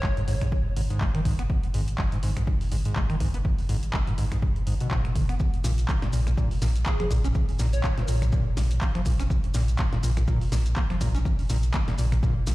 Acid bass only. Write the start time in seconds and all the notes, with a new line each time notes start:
0.03 G#3
0.17 G#2
0.28 G#2
0.42 G#2
0.77 G#2
0.90 G#2
1.01 G#3
1.15 D#3
1.25 G#2
1.39 B3
1.74 G#2
1.99 G#3
2.12 G#2
2.23 G#2
2.37 G#2
2.72 G#2
2.86 G#2
2.96 G#3
3.10 D#3
3.20 G#2
3.34 B3
3.69 G#2
3.94 G#3
4.07 G#2
4.18 G#2
4.32 G#2
4.67 G#2
4.81 B2
4.91 G#2
5.05 B2
5.16 D#3
5.29 B3
5.64 A#2
5.89 A#3
6.02 A#2
6.13 A#2
6.27 A#2
6.38 A#2
6.62 A#2
6.86 A#3
7.00 F3
7.11 A#2
7.24 C#4
7.59 A#2
7.84 A#3
7.98 A#2
8.08 A#2
8.22 A#2
8.33 A#2
8.57 A#2
8.81 A#3
8.95 F3
9.06 A#2
9.19 C#4
9.55 A#2
9.79 A#3
9.93 A#2
10.03 A#2
10.17 A#2
10.28 A#2
10.52 A#2
10.76 A#3
10.90 F3
11.01 A#2
11.15 C#4
11.50 A#2
11.74 A#3
11.88 A#2
11.98 A#2
12.12 A#2
12.23 A#2
12.47 A#2